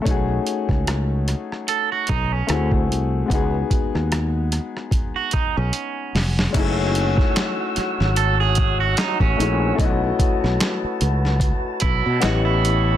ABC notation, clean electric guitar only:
X:1
M:4/4
L:1/16
Q:"Swing 16ths" 1/4=74
K:F#dor
V:1 name="Clean electric guitar"
z8 A F D C2 z3 | z8 z F D C4- C | z8 A G2 F D C3 | z8 z2 E2 F E3 |]